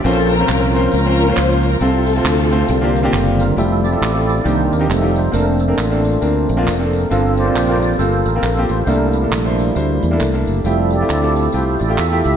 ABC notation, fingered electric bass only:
X:1
M:4/4
L:1/8
Q:"Swing" 1/4=136
K:F
V:1 name="Fingered electric bass" clef=bass
B,,,2 C,,2 _D,,2 D,,2 | C,,2 D,,2 C,,2 _G,,,2 | F,,,2 A,,,2 C,, _E,, F,,,2 | F,,,2 A,,,2 D,, B,,, F,,,2 |
G,,,2 B,,,2 G,,, A,,, B,,, A,,, | C,,2 B,,,2 D,, E,, C,, _G,,, | F,,,2 D,,2 C,, A,,, E,, _D,, |]